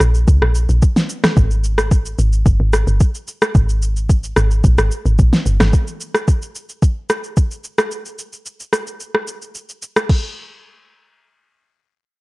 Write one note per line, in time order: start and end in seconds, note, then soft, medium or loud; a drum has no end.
0.00 0.25 A#1 loud
0.00 cross-stick medium
0.00 shaker loud
0.14 shaker medium
0.28 0.41 C#2 loud
0.28 kick loud
0.28 shaker medium
0.42 0.67 A#1 medium
0.42 cross-stick medium
0.55 shaker medium
0.69 0.81 A#1 medium
0.69 shaker medium
0.82 kick medium
0.82 shaker medium
0.96 snare medium
0.96 shaker medium
1.09 shaker medium
1.24 cross-stick loud
1.24 snare medium
1.24 shaker medium
1.37 2.15 G#1 loud
1.37 kick loud
1.37 shaker medium
1.51 shaker medium
1.64 shaker medium
1.78 cross-stick medium
1.78 shaker medium
1.91 kick medium
1.91 shaker medium
2.06 shaker medium
2.19 2.44 G#1 loud
2.19 shaker medium
2.33 shaker medium
2.46 2.59 G1 loud
2.46 kick loud
2.46 shaker medium
2.60 2.85 G#1 loud
2.73 cross-stick medium
2.73 shaker medium
2.87 2.99 G1 medium
2.87 shaker medium
3.00 kick loud
3.00 shaker medium
3.15 shaker medium
3.28 shaker medium
3.42 cross-stick loud
3.42 shaker medium
3.55 4.33 G#1 loud
3.55 kick loud
3.55 shaker medium
3.69 shaker medium
3.82 shaker medium
3.97 shaker medium
4.10 kick medium
4.10 shaker medium
4.24 shaker medium
4.36 4.62 G#1 loud
4.36 cross-stick medium
4.36 shaker medium
4.51 shaker medium
4.64 4.77 A#1 loud
4.64 kick loud
4.64 shaker medium
4.78 4.90 G#1 medium
4.78 cross-stick medium
4.78 shaker medium
4.91 shaker medium
5.06 5.17 G#1 medium
5.06 shaker soft
5.19 5.32 A#1 loud
5.19 kick loud
5.19 shaker medium
5.33 snare medium
5.33 shaker medium
5.46 5.59 G1 medium
5.46 shaker medium
5.60 5.72 G#1 loud
5.60 cross-stick loud
5.60 snare medium
5.60 shaker medium
5.73 kick loud
5.73 shaker medium
5.87 shaker medium
6.01 shaker medium
6.14 cross-stick medium
6.14 shaker medium
6.28 kick medium
6.28 shaker medium
6.42 shaker medium
6.55 shaker medium
6.69 shaker medium
6.82 kick loud
6.82 shaker medium
7.10 cross-stick medium
7.10 shaker medium
7.24 shaker soft
7.37 kick medium
7.37 shaker medium
7.51 shaker medium
7.64 shaker medium
7.78 cross-stick loud
7.78 shaker medium
7.91 shaker medium
8.06 shaker medium
8.19 shaker medium
8.33 shaker medium
8.46 shaker medium
8.60 shaker medium
8.73 cross-stick medium
8.73 shaker medium
8.87 shaker medium
9.00 shaker medium
9.15 cross-stick medium
9.28 shaker medium
9.42 shaker soft
9.55 shaker medium
9.69 shaker medium
9.82 shaker medium
9.96 cross-stick loud
9.96 shaker medium
10.09 kick loud
10.09 crash medium